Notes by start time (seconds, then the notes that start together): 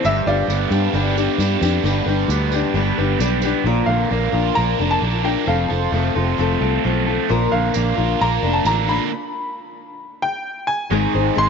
0.03 G1 G2 G3 D4 G4 B4 E5, tambourine
0.26 G1 G3 D4 F4 G4 B4 D5, tambourine
0.47 G1 G3 D4 G4 B4, tambourine
0.51 B3
0.70 G2 D4 G4 B4, tambourine
0.93 G1 G3 B3 D4 G4 B4
1.15 G3 D4 G4 B4, tambourine
1.38 G2 G3 D4 G4 B4, tambourine
1.61 F2 B3 D4 G4 B4, tambourine
1.83 G1 G2 G3 D4 G4 B4, tambourine
2.06 G1 G3 D4 G4 B4
2.28 D2 G3 B3 D4 G4 B4, tambourine
2.51 G4 B4, tambourine
2.55 D4
2.74 G1 G3 B3 D4 G4 B4
2.98 G1 G3 D4 G4 B4
3.18 B1 G3 D4 G4 B4, tambourine
3.42 B3 G4 B4, tambourine
3.46 D4
3.64 A#1 A#2 F3 A#3 D4 F4 A#4
3.86 A#1 D3 A#4 F5
3.91 A#3 D4
4.09 A#1 A#3 D4 F4 A#4
4.32 A#1 A#3 D4 F4 A#4
4.55 A#1 A#2 F3 A#3 D4 F4 A#4 A#5
4.79 F1 A#3 D4 F4 A#4
4.91 A5
5.00 A#1 D3 A#3 D4 F4 A#4
5.23 A#3 D4 F4 A#4 G5
5.45 F1 F2 F3 A3 C4 F4 A4 F5
5.69 F1 F3 C4 F4 A4
5.92 F1 A3 C4 F4
5.97 A4
6.15 F1 C4 F4 A4
6.38 F1 F3 A3 C4 F4 A4
6.61 C2 C4 F4 A4
6.84 B1 F3 A3 C4 F4 A4
7.06 A3 C4 F4 A4
7.29 A#1 A#2 F3 A#3 D4 F4 A#4
7.51 A#1 D3 A#3 D4 F4 A#4 F5
7.73 A#1 A#3 D4 F4 A#4, tambourine
7.96 A#1 A#3 D4 F4 A#4
8.21 A#1 A#2 F3 A#3 D4 F4 A#4 A#5
8.42 F1 D4 F4 A#4
8.47 A#3
8.53 A5
8.65 A1 D3 A#3 D4 F4 A#4 A#5, tambourine
8.87 A#3 D4 F4 A#4 B5
10.22 G5
10.67 G#5
10.90 G#1 G#2 D#3 G#3 C4 D#4 G#4 C5
11.14 G#1 D#4 G#4 C5
11.35 G#1 G#3 D#4 G#4 C5 C6